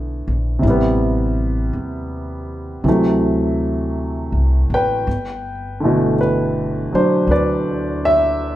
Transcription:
Already playing: upright bass B1, grand piano D3 E3 A3 B3
0.28 upright bass A#1
0.59 grand piano C3 E4
0.63 upright bass A1, grand piano G3
0.70 grand piano B3
1.73 upright bass D#2
2.84 upright bass D2, grand piano C3 E3 F#3
2.88 grand piano A3
4.32 upright bass C2
4.70 upright bass A1
4.74 grand piano B4 G5
5.07 upright bass G1
5.80 grand piano D3 E3 A3
5.85 grand piano B2
6.21 grand piano B4
6.92 grand piano F#3 D4 C5, muted upright bass stroke
7.27 upright bass D2, grand piano B4
7.32 grand piano D5
8.05 grand piano E5

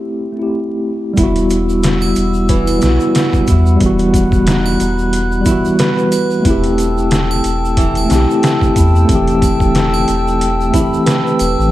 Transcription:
Already playing: tine electric piano A3 C4 E4 G4
0.32 tine electric piano A3 C4
0.39 tine electric piano E4 G4
1.14 tine electric piano G3 B3, kick, shaker
1.18 sub bass E1, analog synth pad G3 F#5 B5 E6, nylon-string guitar E4, tine electric piano E4, closed hi-hat
1.23 tine electric piano F#4
1.36 closed hi-hat, shaker
1.50 closed hi-hat, shaker
1.69 shaker
1.83 snare, closed hi-hat, shaker
2.01 triangle, shaker
2.15 sub bass E1, closed hi-hat, shaker
2.34 shaker
2.49 nylon-string guitar E3, kick, closed hi-hat, shaker
2.67 closed hi-hat, triangle, shaker
2.78 tine electric piano G3 B3, closed hi-hat, shaker
2.83 sub bass B1, tine electric piano E4, snare
2.88 tine electric piano F#4
3.00 shaker
3.15 snare, closed hi-hat, shaker
3.33 kick, shaker
3.47 sub bass E2, nylon-string guitar E4, kick, closed hi-hat, shaker
3.66 shaker
3.76 tine electric piano G3 B3
3.80 sub bass E1, tine electric piano E3, analog synth pad F#6, kick, closed hi-hat, shaker
3.86 tine electric piano F#4
3.99 closed hi-hat, shaker
4.14 kick, closed hi-hat, shaker
4.32 kick, shaker
4.47 nylon-string guitar D#4, snare, closed hi-hat, shaker
4.66 triangle, shaker
4.80 sub bass E1, nylon-string guitar D#4, closed hi-hat, shaker
4.98 shaker
5.13 closed hi-hat, shaker
5.32 shaker
5.41 tine electric piano G3 B3
5.46 tine electric piano E3, nylon-string guitar E4, kick, closed hi-hat, shaker
5.51 tine electric piano F#4
5.65 shaker
5.79 nylon-string guitar B4, snare, closed hi-hat, shaker
5.98 shaker
6.12 closed hi-hat, triangle, shaker
6.30 shaker
6.40 tine electric piano A3 C4, analog synth pad A4 G5 A5 E6
6.45 sub bass E1, nylon-string guitar E4, tine electric piano E4, kick, closed hi-hat, shaker
6.50 tine electric piano G4
6.64 closed hi-hat, shaker
6.78 closed hi-hat, shaker
6.98 shaker
7.11 snare, closed hi-hat, shaker
7.31 triangle, shaker
7.44 sub bass E1, closed hi-hat, shaker
7.65 shaker
7.77 nylon-string guitar E3, kick, closed hi-hat, shaker
7.95 closed hi-hat, triangle, shaker
8.05 tine electric piano A3 C4
8.10 sub bass B1, tine electric piano E4, snare, closed hi-hat, shaker
8.15 tine electric piano G4
8.31 shaker
8.43 snare, closed hi-hat, shaker
8.61 kick, shaker
8.76 sub bass E2, nylon-string guitar E4, kick, closed hi-hat, shaker
8.96 shaker
9.05 tine electric piano A3 C4
9.09 sub bass E1, tine electric piano E3, kick, closed hi-hat, shaker
9.15 tine electric piano G4
9.27 closed hi-hat, shaker
9.42 kick, closed hi-hat, triangle, shaker
9.60 kick, shaker
9.75 nylon-string guitar D#4, snare, closed hi-hat, shaker
9.94 triangle, shaker
10.08 sub bass E1, nylon-string guitar D#4, closed hi-hat, shaker
10.28 shaker
10.41 closed hi-hat, shaker
10.61 shaker
10.70 tine electric piano A3 C4, nylon-string guitar E4, kick, closed hi-hat
10.75 tine electric piano E3, shaker
10.80 tine electric piano G4
10.94 shaker
11.06 nylon-string guitar B4, snare, closed hi-hat, shaker
11.27 shaker
11.39 sub bass E1, closed hi-hat, triangle, shaker
11.59 sub bass A1, shaker
11.69 tine electric piano G3

